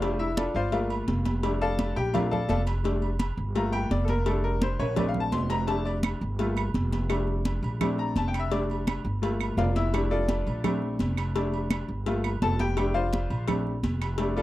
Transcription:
Already playing: upright bass F1, grand piano F4 C5 D5 F5
0.01 grand piano G3 A3 D4, cowbell, high conga, low agogo
0.19 grand piano E4 E5, high conga, low agogo
0.37 grand piano D4 F4 A4 D5, cowbell, high conga, low agogo
0.54 upright bass G1, grand piano F4 C5 D5 F5
0.72 grand piano A3 A#3 F4 A#4 D5 F5, cowbell, high conga, low agogo
0.90 high conga, low agogo
1.08 upright bass F1, cowbell, high conga
1.25 cowbell, high conga, low agogo
1.43 grand piano G3 A3 D4, cowbell, high conga, low agogo
1.61 grand piano A4 D5 F5 A5, high conga
1.79 cowbell, high conga, low agogo
1.96 upright bass A#1, grand piano G4 G5, high conga, low agogo
2.13 grand piano A3 C4 D4 F4 A#4 D5 F5, cowbell, high conga, low conga, low agogo
2.31 grand piano A4 D5 F5 A5, high conga, low conga
2.49 upright bass F1, grand piano A4 D5 F5 A5, cowbell, high conga, low timbale, low agogo
2.67 cowbell, high conga, low agogo
2.83 grand piano G3 A3 D4, cowbell, high conga, low agogo
3.02 high conga, low agogo
3.19 cowbell, high conga, low agogo
3.37 upright bass G1
3.55 grand piano A3 A#3 F4 A#5, cowbell, high conga, low agogo
3.72 grand piano G5, high conga, low agogo
3.91 upright bass F1, grand piano D5, cowbell, high conga
4.05 grand piano A4, cowbell
4.09 grand piano A#4, high conga, low agogo
4.26 grand piano G3 A3 D4 A4, cowbell, high conga, low agogo
4.44 grand piano A#4, high conga
4.62 grand piano C5, cowbell, high conga, low agogo
4.79 upright bass A#1, grand piano C#5, high conga, high timbale, low agogo
4.96 grand piano A3 C4 D4 D5, cowbell, high conga, low conga, high timbale, low agogo
5.09 grand piano F5
5.14 high conga, low conga
5.20 grand piano A5
5.32 upright bass F1, grand piano C6, cowbell, high conga, low timbale, low agogo
5.50 grand piano A#5, cowbell, high conga, low timbale, low agogo
5.67 grand piano G3 A3 D4 A5, cowbell, high conga, low agogo
5.85 grand piano D5, high conga, low agogo
6.03 cowbell, high conga, low agogo, claves
6.21 upright bass G1
6.39 grand piano A3 A#3 F4, cowbell, high conga, low agogo
6.56 high conga, low agogo, claves
6.74 upright bass F1, cowbell, high conga
6.92 cowbell, high conga, low agogo
7.09 grand piano G3 A3 D4, cowbell, high conga, low agogo, claves
7.27 high conga
7.45 cowbell, high conga, low agogo
7.63 upright bass A#1, high conga, low agogo
7.81 grand piano A3 C4 D4, cowbell, high conga, low conga, low agogo, claves
7.98 grand piano A#5, high conga
8.16 upright bass F1, grand piano A5, cowbell, high conga, low agogo
8.28 grand piano G5
8.34 cowbell, high conga, low agogo, claves
8.39 grand piano E5
8.51 grand piano G3 A3 D4 D5, cowbell, high conga, low agogo
8.70 high conga, low agogo
8.87 cowbell, high conga, low agogo, claves
9.04 upright bass G1
9.22 grand piano A3 A#3 F4, cowbell, high conga, low agogo
9.40 high conga, low agogo, claves
9.57 upright bass F1, grand piano F4 A#4 D5 F5, cowbell, high conga, low timbale
9.76 grand piano E4 E5, cowbell, high conga, low agogo
9.92 grand piano G3 A3 D4, cowbell, high conga, low agogo, claves
10.11 grand piano D4 F4 A4 D5, high conga
10.29 cowbell, high conga, low agogo
10.47 upright bass A#1, high conga, low agogo
10.64 grand piano A3 C4 D4, cowbell, high conga, low conga, low agogo, claves
10.82 high conga
10.99 upright bass F1, cowbell, high conga, low agogo
11.17 cowbell, high conga, low agogo, claves
11.35 grand piano G3 A3 D4, cowbell, high conga, low agogo
11.52 high conga, low agogo
11.70 cowbell, high conga, low agogo, claves
11.88 upright bass G1
12.06 grand piano A3 A#3 F4, cowbell, high conga, low agogo
12.24 high conga, low agogo, claves
12.42 upright bass F1, grand piano A4 A5, cowbell, high conga, low timbale
12.59 grand piano G4 G5, cowbell, high conga, low agogo
12.77 grand piano G3 A3 D4, cowbell, high conga, low agogo, claves
12.94 grand piano F4 C5 D5 F5, high conga
13.13 cowbell, high conga, low agogo
13.30 upright bass A#1, high conga, low agogo
13.47 grand piano A3 C4 D4, cowbell, high conga, low conga, low agogo, claves
13.67 high conga
13.83 upright bass F1, cowbell, high conga, low agogo
14.02 cowbell, high conga, low agogo, claves
14.18 grand piano G3 A3 D4, cowbell, high conga, low agogo
14.37 grand piano D4 F4 A4 D5, high conga, low agogo

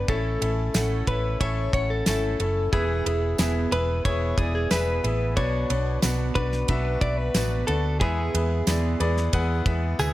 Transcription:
Already playing: grand piano B3, clean electric guitar B4
0.08 fingered electric bass A1, steel-string acoustic guitar A2 A3 C#4 E4 A4, grand piano A2 C#4 E4 A4 C#5 E5, clean electric guitar A4, kick, ride
0.41 fingered electric bass A1, grand piano C#4 E4 A4 C#5 E5, steel-string acoustic guitar C#4 E4 A4, ride
0.74 fingered electric bass A1, steel-string acoustic guitar A2 A3 C#4 E4 A4, grand piano C#4 E4 A4 C#5 F#5, snare, ride, tambourine
1.07 fingered electric bass A1, grand piano C#4 E4 A4 C#5 E5, steel-string acoustic guitar C#4 E4 A4, clean electric guitar B4, kick, ride
1.40 fingered electric bass A1, steel-string acoustic guitar A3 C#4 E4 A4, grand piano C#4 E4 A4 C#5 E5, clean electric guitar C#5, kick, ride
1.73 fingered electric bass A1, grand piano C#4 E4 A4 C#5 F#5, steel-string acoustic guitar C#4 E4 A4, clean electric guitar C#5, kick, ride
1.90 clean electric guitar A4
2.06 fingered electric bass G#1, steel-string acoustic guitar A2 A3 C#4 E4 A4, grand piano C#4 E4 A4 C#5 E5, clean electric guitar A4, snare, ride, tambourine
2.39 fingered electric bass F#1, grand piano C#4 E4 A4 C#5 E5, steel-string acoustic guitar C#4 E4 A4, ride
2.73 fingered electric bass E1, steel-string acoustic guitar E2 B2 E3 B3 E4 G#4, grand piano E3 B3 E4 G#4 B4 E5, clean electric guitar G#4, kick, ride
3.05 fingered electric bass E1, steel-string acoustic guitar E3 B3 E4 G#4, grand piano B3 E4 G#4 B4 E5, ride
3.38 fingered electric bass E1, steel-string acoustic guitar E2 B2 E3 B3 E4 G#4, grand piano B3 E4 G#4 B4 E5, snare, ride, tambourine
3.71 fingered electric bass E1, steel-string acoustic guitar E3 B3 E4 G#4, grand piano B3 E4 G#4 B4 E5, clean electric guitar B4, ride
4.05 fingered electric bass E1, steel-string acoustic guitar E3 B3 E4 G#4, grand piano B3 E4 G#4 B4 E5, clean electric guitar C#5, kick, ride
4.38 fingered electric bass E1, steel-string acoustic guitar E3 B3 E4 G#4, grand piano B3 E4 G#4 B4 D5, clean electric guitar G#4, kick, ride
4.55 clean electric guitar G#4
4.71 fingered electric bass E1, steel-string acoustic guitar E2 B2 E3 B3 E4 G#4, grand piano B3 E4 G#4 B4 E5, clean electric guitar B4, snare, ride, tambourine
5.03 fingered electric bass A1, steel-string acoustic guitar E3 B3 E4 G#4, grand piano B3 E4 G#4 B4 E5, ride
5.36 fingered electric bass B1, steel-string acoustic guitar B2 F#3 B3 D4 F#4, grand piano B2 B3 D4 F#4 B4 D5, clean electric guitar C#5, kick, ride
5.69 fingered electric bass B1, grand piano B3 D4 F#4 B4 D5, steel-string acoustic guitar B3 D4 F#4, ride
6.02 fingered electric bass B1, steel-string acoustic guitar B2 F#3 B3 D4 F#4, grand piano B3 D4 F#4 B4 D5, snare, ride, tambourine
6.35 fingered electric bass B1, grand piano B3 D4 F#4 B4 D5, steel-string acoustic guitar B3 D4, clean electric guitar B4, kick, ride
6.52 snare
6.68 fingered electric bass B1, steel-string acoustic guitar F#3 B3 D4 F#4, grand piano B3 D4 F#4 B4 E5, kick, ride
7.01 fingered electric bass B1, grand piano B3 D4 F#4 B4 E5, steel-string acoustic guitar B3 D4 F#4, clean electric guitar D5, kick, ride
7.18 clean electric guitar B4
7.34 fingered electric bass A1, steel-string acoustic guitar B2 F#3 B3 D4 F#4, grand piano B3 D4 F#4 B4 D5, snare, ride, tambourine
7.67 fingered electric bass D2, grand piano B3 D4 F#4 B4 D5, steel-string acoustic guitar B3 D4 F#4, clean electric guitar A4, ride
8.00 steel-string acoustic guitar E2 B2 E3 G#3 B3 G#4, fingered electric bass E2, grand piano E3 B3 E4 G#4 B4 E5, clean electric guitar G#4, kick, ride
8.34 fingered electric bass E2, steel-string acoustic guitar E3 G#3 B3 G#4, grand piano B3 E4 G#4 B4 E5, ride
8.67 steel-string acoustic guitar E2 B2 E3 G#3 B3 G#4, fingered electric bass E2, grand piano B3 E4 G#4 B4 D5, snare, ride, tambourine
9.00 fingered electric bass E2, steel-string acoustic guitar E3 G#3 B3 G#4, grand piano B3 E4 G#4 B4 D5, ride
9.17 snare
9.33 fingered electric bass E2, steel-string acoustic guitar E3 G#3 B3 G#4, grand piano B3 E4 G#4 B4 F#5, kick, ride
9.66 fingered electric bass E2, steel-string acoustic guitar E3 G#3 B3 G#4, grand piano B3 E4 G#4 B4 E5, kick, ride
9.99 fingered electric bass D2, steel-string acoustic guitar E2 B2 E3 G#3 B3 G#4, grand piano B3 E4 G#4 B4 E5, clean electric guitar G#4, high tom, tambourine

